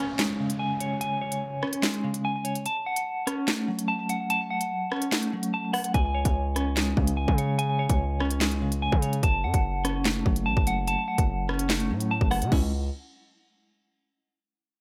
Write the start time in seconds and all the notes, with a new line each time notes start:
Already playing: C#5 G#5, downlifter
0.00 C#4
0.19 G#3, snare, clap, closed hi-hat
0.40 C#3
0.50 closed hi-hat
0.59 G#5
0.80 C#5, closed hi-hat
1.01 G#5, closed hi-hat
1.21 C#5
1.32 closed hi-hat
1.63 C#4, cross-stick
1.73 closed hi-hat
1.83 G#3, snare, clap, closed hi-hat
1.94 closed hi-hat
2.04 C#3
2.14 closed hi-hat
2.25 G#5
2.45 C#5, closed hi-hat
2.55 closed hi-hat
2.66 A5, closed hi-hat
2.86 F#5
2.96 closed hi-hat
3.27 C#4, cross-stick, closed hi-hat
3.48 A3, snare, clap, closed hi-hat
3.68 F#3
3.79 closed hi-hat
3.88 A5
4.09 F#5, closed hi-hat
4.30 A5, closed hi-hat
4.50 F#5
4.61 closed hi-hat
4.91 C#4, cross-stick
5.02 closed hi-hat
5.12 A3, snare, clap, closed hi-hat
5.22 closed hi-hat
5.33 F#3
5.43 closed hi-hat
5.54 A5
5.73 F#5, cross-stick, open hi-hat
5.84 closed hi-hat
5.94 C#2 G#5, kick, closed hi-hat
6.14 C#5
6.25 C#2, kick, closed hi-hat
6.56 C#4, cross-stick, closed hi-hat
6.76 G#3, snare, clap, closed hi-hat
6.97 C#2 C#3, kick
7.07 closed hi-hat
7.17 G#5
7.28 C#3, kick
7.38 C#5, closed hi-hat
7.59 G#5, closed hi-hat
7.79 C#5
7.89 C#2, kick, closed hi-hat
8.20 C#4, cross-stick
8.30 closed hi-hat
8.40 G#3, snare, clap, closed hi-hat
8.51 closed hi-hat
8.62 C#3
8.72 closed hi-hat
8.82 G#5
8.92 C#3, kick
9.02 C#5, closed hi-hat
9.13 closed hi-hat
9.23 F#1 A5, kick, closed hi-hat
9.44 F#2 F#5
9.54 F#1, kick, closed hi-hat
9.85 C#4, cross-stick, closed hi-hat
10.05 A3, snare, clap, closed hi-hat
10.26 F#1 F#3, kick
10.36 closed hi-hat
10.46 A1 A5
10.57 F#1, kick
10.67 F#5, closed hi-hat
10.87 A5, closed hi-hat
11.08 F#5
11.18 F#1, kick, closed hi-hat
11.49 C#4, cross-stick
11.59 closed hi-hat
11.69 A3, snare, clap, closed hi-hat
11.80 closed hi-hat
11.90 A2 F#3
12.00 closed hi-hat
12.11 A5
12.21 F#1, kick
12.31 F#5, cross-stick, open hi-hat
12.42 C#3, closed hi-hat
12.52 C#2 G#3 C#4 E4, kick, crash